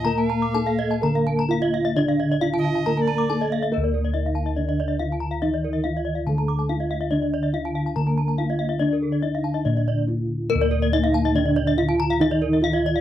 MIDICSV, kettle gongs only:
0, 0, Header, 1, 2, 480
1, 0, Start_track
1, 0, Tempo, 484653
1, 46, Time_signature, 4, 2, 24, 8
1, 1484, Tempo, 449438
1, 3404, Tempo, 424028
1, 14398, End_track
2, 0, Start_track
2, 0, Title_t, "Kettle gongs"
2, 0, Program_c, 0, 14
2, 0, Note_on_c, 0, 46, 75
2, 59, Note_on_c, 0, 70, 58
2, 502, Note_off_c, 0, 46, 0
2, 547, Note_on_c, 0, 63, 39
2, 626, Note_off_c, 0, 63, 0
2, 1024, Note_on_c, 0, 50, 78
2, 1450, Note_off_c, 0, 70, 0
2, 1488, Note_on_c, 0, 63, 37
2, 1573, Note_off_c, 0, 63, 0
2, 1990, Note_on_c, 0, 62, 65
2, 2426, Note_off_c, 0, 50, 0
2, 2473, Note_on_c, 0, 63, 45
2, 2556, Note_off_c, 0, 63, 0
2, 2947, Note_on_c, 0, 50, 59
2, 3367, Note_off_c, 0, 62, 0
2, 3412, Note_on_c, 0, 63, 40
2, 3497, Note_off_c, 0, 63, 0
2, 3884, Note_on_c, 0, 70, 68
2, 3945, Note_on_c, 0, 38, 84
2, 4328, Note_off_c, 0, 50, 0
2, 4363, Note_on_c, 0, 63, 46
2, 4451, Note_off_c, 0, 63, 0
2, 5280, Note_off_c, 0, 70, 0
2, 5334, Note_on_c, 0, 63, 41
2, 5418, Note_off_c, 0, 63, 0
2, 5814, Note_on_c, 0, 63, 75
2, 6280, Note_off_c, 0, 63, 0
2, 6294, Note_on_c, 0, 63, 51
2, 6378, Note_off_c, 0, 63, 0
2, 6749, Note_off_c, 0, 38, 0
2, 6768, Note_on_c, 0, 50, 79
2, 7254, Note_on_c, 0, 63, 44
2, 7338, Note_off_c, 0, 63, 0
2, 7729, Note_on_c, 0, 62, 59
2, 8161, Note_off_c, 0, 50, 0
2, 8207, Note_on_c, 0, 63, 45
2, 8293, Note_off_c, 0, 63, 0
2, 8688, Note_on_c, 0, 50, 84
2, 9121, Note_off_c, 0, 62, 0
2, 9169, Note_on_c, 0, 63, 47
2, 9254, Note_off_c, 0, 63, 0
2, 9645, Note_on_c, 0, 62, 70
2, 10080, Note_off_c, 0, 50, 0
2, 10121, Note_on_c, 0, 63, 43
2, 10209, Note_off_c, 0, 63, 0
2, 10604, Note_on_c, 0, 46, 79
2, 11039, Note_off_c, 0, 62, 0
2, 11076, Note_on_c, 0, 63, 40
2, 11165, Note_off_c, 0, 63, 0
2, 11562, Note_on_c, 0, 70, 63
2, 11618, Note_on_c, 0, 38, 100
2, 11998, Note_off_c, 0, 46, 0
2, 12041, Note_on_c, 0, 63, 45
2, 12128, Note_off_c, 0, 63, 0
2, 12956, Note_off_c, 0, 70, 0
2, 13012, Note_on_c, 0, 63, 42
2, 13095, Note_off_c, 0, 63, 0
2, 13493, Note_on_c, 0, 63, 67
2, 13960, Note_off_c, 0, 63, 0
2, 13974, Note_on_c, 0, 63, 48
2, 14056, Note_off_c, 0, 63, 0
2, 14398, Note_off_c, 0, 38, 0
2, 14398, End_track
0, 0, End_of_file